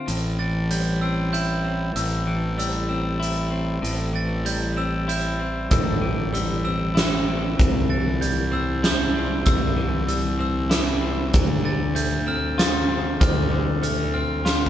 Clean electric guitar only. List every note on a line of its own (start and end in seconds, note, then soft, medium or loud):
0.00 0.70 A3 soft
0.00 1.02 C4 soft
0.07 1.95 A2 medium
0.39 2.26 E3 soft
0.71 2.58 G3 soft
1.02 1.64 C4 soft
1.33 3.19 E4 medium
1.65 2.89 C4 soft
1.96 3.82 A2 medium
2.27 4.12 E3 medium
2.58 4.45 G3 medium
2.89 3.50 C4 medium
3.20 5.07 E4 medium
3.51 4.76 C4 soft
3.82 5.39 A2 medium
4.13 6.01 E3 medium
4.45 6.33 G3 medium
4.77 5.39 C4 medium
5.08 6.94 E4 medium
5.40 6.64 C4 medium
5.71 7.27 A2 medium
6.02 7.89 E3 medium
6.33 8.21 G3 medium
6.64 7.26 C4 medium
6.95 8.83 E4 medium
7.27 8.51 C4 soft
7.58 9.15 C3 soft
7.89 9.46 E3 medium
8.21 9.77 G3 soft
8.52 9.15 C4 medium
8.83 10.40 E4 medium
9.15 10.39 C4 medium
9.47 11.02 C3 medium
9.77 11.33 E3 medium
10.08 11.33 G3 medium
10.39 11.01 C4 medium
10.70 11.33 E4 medium
11.01 11.36 C4 medium
11.33 11.63 D3 medium
11.64 13.19 D3 medium
11.95 13.51 A3 medium
12.27 12.87 C4 medium
12.58 14.14 F4 medium
12.88 14.13 C4 medium
13.20 13.50 D3 medium
13.51 14.69 D3 medium
13.83 14.69 A3 medium
14.14 14.69 C4 medium
14.45 14.69 F4 medium